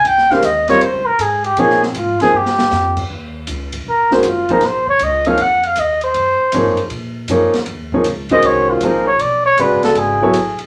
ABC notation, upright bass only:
X:1
M:4/4
L:1/8
Q:"Swing" 1/4=158
K:Bbdor
V:1 name="Upright bass" clef=bass
D,,2 E,,2 (3F,, D,, B,,, A,,2 | B,,2 A,, z G,,2 F,,2 | [K:Ebdor] E,,2 D,,2 B,,,2 G,,,2 | B,,,2 D,,2 F,,2 E,,2 |
G,, z (3A,, G,, E,, B,,2 G,, z | E,,2 D,,2 C,,2 B,,,2 | =B,,,2 (3=A,,, ^F,,, =D,,, _A,,,2 =A,,, z |]